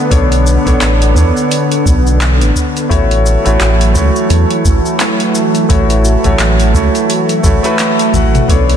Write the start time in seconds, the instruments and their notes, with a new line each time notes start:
Already playing: analog synth pad D3 B3, grand piano B3 D4 A4 C#5
0.10 analog synth bass B1, grand piano B3 D4 A4 C#5, kick, open hi-hat, cabasa
0.32 open hi-hat, cabasa
0.47 cabasa
0.65 analog synth bass B1, grand piano B3 D4 A4 C#5, kick, open hi-hat, cabasa
0.81 analog synth bass A1, clap, open hi-hat, cabasa
1.02 open hi-hat, cabasa
1.14 analog synth bass E2, grand piano B3 D4 A4, kick, cabasa
1.19 grand piano C#5
1.37 cabasa
1.52 open hi-hat, cabasa
1.72 open hi-hat, cabasa
1.86 analog synth bass B1, kick, cabasa
2.07 cabasa
2.21 clap, open hi-hat, cabasa
2.41 analog synth bass A1, open hi-hat, cabasa
2.56 kick, cabasa
2.77 open hi-hat, cabasa
2.89 analog synth bass A1, analog synth pad E3 F#3 A3, grand piano A3 E4 F#4 C#5, kick, open hi-hat, cabasa
3.11 open hi-hat
3.26 cabasa
3.45 analog synth bass A1, grand piano A3 E4 F#4 C#5, open hi-hat, cabasa
3.60 analog synth bass A1, clap, open hi-hat, cabasa
3.81 open hi-hat, cabasa
3.93 analog synth bass C#2, grand piano A3 E4 F#4, kick, cabasa
3.98 grand piano C#5
4.16 cabasa
4.30 analog synth bass E2, open hi-hat, cabasa
4.51 open hi-hat
4.65 analog synth bass A1, kick, cabasa
4.86 cabasa
5.00 clap, open hi-hat, cabasa
5.20 open hi-hat
5.35 cabasa
5.55 open hi-hat, cabasa
5.69 analog synth bass A1, grand piano A3 E4 F#4 C#5, kick, open hi-hat, cabasa
5.90 open hi-hat, cabasa
6.05 cabasa
6.24 analog synth bass A1, grand piano A3 E4 F#4 C#5, kick, open hi-hat, cabasa
6.39 analog synth bass A1, clap, open hi-hat, cabasa
6.60 open hi-hat, cabasa
6.74 analog synth bass C#2, grand piano A3 E4 F#4 C#5, kick, cabasa
6.95 open hi-hat, cabasa
7.10 open hi-hat, cabasa
7.29 open hi-hat, cabasa
7.43 analog synth bass A1, grand piano A3 E4 F#4 C#5, kick, cabasa
7.63 grand piano A3 E4 F#4 B4, open hi-hat, cabasa
7.79 clap, open hi-hat, cabasa
7.99 open hi-hat, cabasa
8.13 analog synth bass A1, grand piano A3 E4 F#4 F#5, kick, high tom, cabasa
8.35 open hi-hat, mid tom, cabasa
8.48 analog synth bass B1, analog synth pad D3 B3, grand piano B3 D4 A4 C#5, kick, open hi-hat, cabasa
8.70 open hi-hat